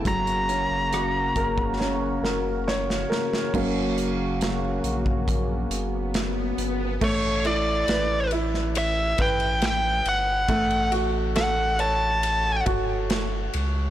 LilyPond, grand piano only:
\new Staff \with { instrumentName = "Grand piano" } { \time 4/4 \key fis \phrygian \tempo 4 = 69 fis8 cis'8 fis'8 ais'8 cis'8 ais'8 cis''8 ais'8 | <fis ais cis'>1 | a8 e'8 b'8 e'4 b'4. | a8 fis'8 a'8 cis''4 fis'4. | }